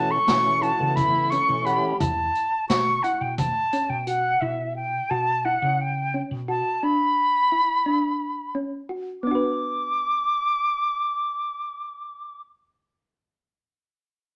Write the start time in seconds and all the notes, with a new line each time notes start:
Already playing: B2 E3 A3 C#4 F#4 A5
0.11 A4 C#6
0.27 B2 E3 A3 C#4 F#4, snare, closed hi-hat
0.62 E4 F#4 A5, closed hi-hat
0.79 C#3 E3 A3 B3
0.96 E4 B5, kick, closed hi-hat
1.30 C#4 A4 C#6, closed hi-hat
1.48 B2 E3 A3 C#4
1.65 G4 F#5 B5, closed hi-hat
1.99 E2 E4 A5, kick, closed hi-hat
2.35 closed hi-hat
2.69 B2 F#4 C#6, snare, closed hi-hat
3.03 E4 F#5, closed hi-hat
3.21 B2 G5
3.38 A5, kick, closed hi-hat
3.73 C#4, closed hi-hat
3.90 B2 G5
4.07 F#4 F#5, closed hi-hat
4.41 B2 E4 E5
4.76 G5
5.10 B2 F#4 A5
5.45 E4 F#5
5.62 C#3
5.81 G5
6.14 C#4
6.31 B2
6.48 F#4 A5
6.83 D4 B5
7.52 E4
7.86 D4
8.55 C#4
8.89 F#4
9.23 B3 D4 D6
9.31 F#4 B4